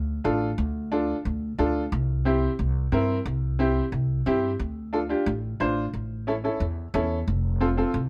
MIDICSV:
0, 0, Header, 1, 3, 480
1, 0, Start_track
1, 0, Key_signature, -1, "minor"
1, 0, Tempo, 334635
1, 835, Time_signature, 4, 2, 24, 8
1, 11609, End_track
2, 0, Start_track
2, 0, Title_t, "Upright piano"
2, 0, Program_c, 0, 0
2, 349, Note_on_c, 0, 62, 77
2, 353, Note_on_c, 0, 65, 76
2, 358, Note_on_c, 0, 69, 88
2, 688, Note_off_c, 0, 62, 0
2, 690, Note_off_c, 0, 65, 0
2, 692, Note_off_c, 0, 69, 0
2, 1314, Note_on_c, 0, 62, 86
2, 1321, Note_on_c, 0, 65, 70
2, 1324, Note_on_c, 0, 69, 79
2, 1650, Note_off_c, 0, 62, 0
2, 1654, Note_off_c, 0, 65, 0
2, 1655, Note_off_c, 0, 69, 0
2, 2274, Note_on_c, 0, 62, 84
2, 2278, Note_on_c, 0, 65, 75
2, 2285, Note_on_c, 0, 69, 91
2, 2610, Note_off_c, 0, 62, 0
2, 2612, Note_off_c, 0, 65, 0
2, 2616, Note_off_c, 0, 69, 0
2, 3231, Note_on_c, 0, 60, 78
2, 3237, Note_on_c, 0, 64, 71
2, 3243, Note_on_c, 0, 67, 84
2, 3569, Note_off_c, 0, 60, 0
2, 3572, Note_off_c, 0, 64, 0
2, 3575, Note_off_c, 0, 67, 0
2, 4192, Note_on_c, 0, 60, 85
2, 4199, Note_on_c, 0, 64, 77
2, 4203, Note_on_c, 0, 70, 90
2, 4529, Note_off_c, 0, 60, 0
2, 4533, Note_off_c, 0, 64, 0
2, 4535, Note_off_c, 0, 70, 0
2, 5149, Note_on_c, 0, 60, 78
2, 5154, Note_on_c, 0, 64, 69
2, 5161, Note_on_c, 0, 67, 85
2, 5488, Note_off_c, 0, 60, 0
2, 5490, Note_off_c, 0, 64, 0
2, 5493, Note_off_c, 0, 67, 0
2, 6112, Note_on_c, 0, 60, 72
2, 6115, Note_on_c, 0, 64, 72
2, 6121, Note_on_c, 0, 67, 87
2, 6449, Note_off_c, 0, 60, 0
2, 6450, Note_off_c, 0, 64, 0
2, 6454, Note_off_c, 0, 67, 0
2, 7067, Note_on_c, 0, 62, 76
2, 7072, Note_on_c, 0, 65, 66
2, 7079, Note_on_c, 0, 69, 90
2, 7154, Note_off_c, 0, 62, 0
2, 7157, Note_off_c, 0, 65, 0
2, 7160, Note_off_c, 0, 69, 0
2, 7306, Note_on_c, 0, 62, 72
2, 7311, Note_on_c, 0, 65, 58
2, 7320, Note_on_c, 0, 67, 76
2, 7562, Note_off_c, 0, 62, 0
2, 7564, Note_off_c, 0, 65, 0
2, 7569, Note_off_c, 0, 67, 0
2, 8032, Note_on_c, 0, 62, 80
2, 8037, Note_on_c, 0, 65, 67
2, 8045, Note_on_c, 0, 72, 84
2, 8369, Note_off_c, 0, 62, 0
2, 8371, Note_off_c, 0, 65, 0
2, 8375, Note_off_c, 0, 72, 0
2, 8995, Note_on_c, 0, 61, 73
2, 9001, Note_on_c, 0, 64, 72
2, 9008, Note_on_c, 0, 69, 86
2, 9078, Note_off_c, 0, 61, 0
2, 9081, Note_off_c, 0, 64, 0
2, 9085, Note_off_c, 0, 69, 0
2, 9236, Note_on_c, 0, 61, 64
2, 9242, Note_on_c, 0, 64, 65
2, 9248, Note_on_c, 0, 69, 81
2, 9487, Note_off_c, 0, 61, 0
2, 9490, Note_off_c, 0, 64, 0
2, 9493, Note_off_c, 0, 69, 0
2, 9955, Note_on_c, 0, 61, 77
2, 9960, Note_on_c, 0, 64, 70
2, 9965, Note_on_c, 0, 69, 87
2, 10290, Note_off_c, 0, 61, 0
2, 10293, Note_off_c, 0, 64, 0
2, 10295, Note_off_c, 0, 69, 0
2, 10909, Note_on_c, 0, 60, 80
2, 10916, Note_on_c, 0, 65, 76
2, 10920, Note_on_c, 0, 69, 85
2, 10995, Note_off_c, 0, 60, 0
2, 10998, Note_off_c, 0, 65, 0
2, 11000, Note_off_c, 0, 69, 0
2, 11150, Note_on_c, 0, 60, 73
2, 11156, Note_on_c, 0, 65, 69
2, 11161, Note_on_c, 0, 69, 83
2, 11403, Note_off_c, 0, 60, 0
2, 11406, Note_off_c, 0, 65, 0
2, 11408, Note_off_c, 0, 69, 0
2, 11609, End_track
3, 0, Start_track
3, 0, Title_t, "Upright bass"
3, 0, Program_c, 1, 32
3, 0, Note_on_c, 1, 38, 83
3, 259, Note_off_c, 1, 38, 0
3, 354, Note_on_c, 1, 33, 93
3, 738, Note_off_c, 1, 33, 0
3, 831, Note_on_c, 1, 38, 104
3, 1600, Note_off_c, 1, 38, 0
3, 1797, Note_on_c, 1, 38, 88
3, 2180, Note_off_c, 1, 38, 0
3, 2273, Note_on_c, 1, 38, 85
3, 2657, Note_off_c, 1, 38, 0
3, 2755, Note_on_c, 1, 36, 100
3, 3523, Note_off_c, 1, 36, 0
3, 3715, Note_on_c, 1, 36, 91
3, 4099, Note_off_c, 1, 36, 0
3, 4188, Note_on_c, 1, 43, 87
3, 4575, Note_off_c, 1, 43, 0
3, 4669, Note_on_c, 1, 36, 101
3, 5439, Note_off_c, 1, 36, 0
3, 5624, Note_on_c, 1, 36, 86
3, 6012, Note_off_c, 1, 36, 0
3, 6111, Note_on_c, 1, 43, 87
3, 6496, Note_off_c, 1, 43, 0
3, 6591, Note_on_c, 1, 38, 95
3, 7360, Note_off_c, 1, 38, 0
3, 7549, Note_on_c, 1, 33, 98
3, 7935, Note_off_c, 1, 33, 0
3, 8036, Note_on_c, 1, 33, 88
3, 8419, Note_off_c, 1, 33, 0
3, 8513, Note_on_c, 1, 33, 83
3, 9281, Note_off_c, 1, 33, 0
3, 9470, Note_on_c, 1, 40, 95
3, 9855, Note_off_c, 1, 40, 0
3, 9953, Note_on_c, 1, 40, 101
3, 10337, Note_off_c, 1, 40, 0
3, 10436, Note_on_c, 1, 29, 98
3, 11202, Note_off_c, 1, 29, 0
3, 11389, Note_on_c, 1, 36, 95
3, 11609, Note_off_c, 1, 36, 0
3, 11609, End_track
0, 0, End_of_file